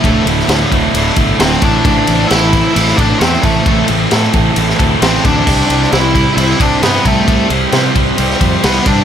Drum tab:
CC |----------------|----------------|----------------|x---------------|
RD |x-x-x-x-x-x-x-x-|x-x-x-x-x-x-x-x-|x-x-x-x-x-x-x-x-|--x-x-x-x-x-x-x-|
SD |---oo-------o---|----o----o--o---|----o----o--o---|---oo-------o---|
BD |o-----o---o---o-|o-----o---o---o-|o-----o---o---o-|o-----o---o---o-|

CC |----------------|
RD |x-x-x-x-x-x-x-x-|
SD |----o----o--o---|
BD |o-----o---o---o-|